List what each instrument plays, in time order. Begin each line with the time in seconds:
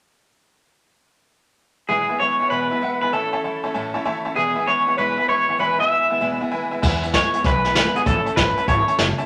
1.88 steel-string acoustic guitar E2 B2 E3 G#3 B3 E4, clean electric guitar G#4, honky-tonk piano B4 E5 G#5
2.09 steel-string acoustic guitar E3 G#3 B3 E4, honky-tonk piano B4 E5 G#5
2.19 steel-string acoustic guitar E3 G#3 B3 E4, honky-tonk piano B4 E5, clean electric guitar C#5
2.39 steel-string acoustic guitar E3 G#3 B3 E4, honky-tonk piano B4 E5 G#5
2.50 steel-string acoustic guitar E2 B2 E3 G#3 B3 E4, clean electric guitar B4, honky-tonk piano B4 E5 G#5
2.70 steel-string acoustic guitar E3 G#3 B3 E4, honky-tonk piano B4 E5 G#5
2.82 steel-string acoustic guitar E3 G#3 B3 E4, honky-tonk piano B4 E5 F#5
3.02 steel-string acoustic guitar E3 G#3 B3 E4, clean electric guitar B4, honky-tonk piano B4 E5 G#5
3.13 steel-string acoustic guitar A2 E3 A3 C#4 E4, clean electric guitar A4, honky-tonk piano C#5 E5 A5
3.33 steel-string acoustic guitar A3 C#4 E4, honky-tonk piano C#5 E5 A5
3.44 steel-string acoustic guitar E3 A3 C#4 E4, honky-tonk piano C#5 E5 A5
3.64 steel-string acoustic guitar A3 C#4 E4, honky-tonk piano C#5 E5 A5
3.74 steel-string acoustic guitar A2 E3 A3 C#4 E4, honky-tonk piano C#5 E5 A5
3.94 steel-string acoustic guitar A3 C#4 E4, honky-tonk piano C#5 E5 A5
4.05 steel-string acoustic guitar E3 A3 C#4 E4, honky-tonk piano C#5 E5 A5 C#6
4.25 steel-string acoustic guitar A3 C#4 E4, honky-tonk piano C#5 E5 A5
4.35 steel-string acoustic guitar E2 B2 E3 G#3 B3 E4, clean electric guitar G#4, honky-tonk piano B4 E5 G#5
4.56 steel-string acoustic guitar E3 G#3 B3 E4, honky-tonk piano B4 E5 G#5
4.66 steel-string acoustic guitar E3 G#3 B3 E4, honky-tonk piano B4 E5 G#5, clean electric guitar C#5
4.87 steel-string acoustic guitar E3 G#3 B3 E4, honky-tonk piano B4 E5 G#5
4.98 steel-string acoustic guitar E2 B2 E3 G#3 B3 E4, honky-tonk piano B4 E5 G#5, clean electric guitar B4
5.17 steel-string acoustic guitar E3 G#3 B3 E4, honky-tonk piano B4 E5 G#5
5.28 steel-string acoustic guitar E3 G#3 B3 E4, honky-tonk piano B4 E5 B5, clean electric guitar C#5
5.48 steel-string acoustic guitar E3 G#3 B3 E4, honky-tonk piano B4 E5 G#5
5.58 steel-string acoustic guitar E2 B2 E3 G#3 B3 E4, honky-tonk piano B4 E5 G#5, clean electric guitar B4
5.78 steel-string acoustic guitar E3 G#3 B3 E4, honky-tonk piano B4 E5 G#5, clean electric guitar E5
5.90 steel-string acoustic guitar E3 G#3 B3 E4, honky-tonk piano B4 E5 G#5
6.09 steel-string acoustic guitar E3 G#3 B3 E4, honky-tonk piano B4 E5 G#5
6.21 steel-string acoustic guitar E2 B2 E3 G#3 B3 E4, honky-tonk piano B4 E5 G#5
6.40 steel-string acoustic guitar E3 G#3 B3 E4, honky-tonk piano B4 E5 G#5
6.51 steel-string acoustic guitar E3 G#3 B3 E4, honky-tonk piano B4 E5 G#5
6.71 steel-string acoustic guitar E3 G#3 B3 E4, honky-tonk piano B4 E5 G#5
6.82 steel-string acoustic guitar E2 B2 E3 G#3 B3 E4, upright bass E2, honky-tonk piano B4 E5 G#5, kick, crash
7.02 steel-string acoustic guitar E3 G#3 B3 E4, honky-tonk piano B4 E5 G#5, closed hi-hat
7.13 steel-string acoustic guitar E3 G#3 B3 E4, honky-tonk piano B4 E5 G#5, clean electric guitar C#5, kick, snare, closed hi-hat
7.33 steel-string acoustic guitar E3 G#3 B3 E4, honky-tonk piano B4 E5 G#5, muted upright bass stroke, closed hi-hat
7.44 upright bass B1, steel-string acoustic guitar E2 B2 E3 G#3 B3 E4, honky-tonk piano B4 E5 G#5, clean electric guitar B4, kick, snare, closed hi-hat
7.64 steel-string acoustic guitar E3 G#3 B3 E4, honky-tonk piano B4 E5 G#5, snare, closed hi-hat
7.75 steel-string acoustic guitar E3 G#3 B3 E4, honky-tonk piano B4 E5 G#5, clean electric guitar B4, snare, closed hi-hat
7.95 steel-string acoustic guitar E3 G#3 B3 E4, clean electric guitar G#4, honky-tonk piano B4 E5 F#5, muted upright bass stroke, closed hi-hat
8.05 upright bass A1, steel-string acoustic guitar A2 E3 A3 C#4 E4, clean electric guitar A4, honky-tonk piano C#5 E5 A5, kick, closed hi-hat
8.25 steel-string acoustic guitar A3 C#4 E4, honky-tonk piano C#5 E5 A5, muted upright bass stroke, closed hi-hat
8.36 upright bass A1, steel-string acoustic guitar E3 A3 C#4 E4, clean electric guitar B4, honky-tonk piano C#5 E5 A5, kick, snare, closed hi-hat
8.56 steel-string acoustic guitar A3 C#4 E4, honky-tonk piano C#5 E5 A5, muted upright bass stroke, closed hi-hat
8.67 upright bass G#1, steel-string acoustic guitar A2 E3 A3 C#4 E4, honky-tonk piano C#5 E5 A5, clean electric guitar C#5, kick, closed hi-hat
8.88 steel-string acoustic guitar A3 C#4 E4, honky-tonk piano C#5 E5 A5, closed hi-hat
8.98 upright bass F#1, steel-string acoustic guitar E3 A3 C#4 E4, honky-tonk piano C#5 E5 A5, snare, closed hi-hat
9.18 steel-string acoustic guitar A3 C#4 E4, honky-tonk piano C#5 E5 A5, muted upright bass stroke, closed hi-hat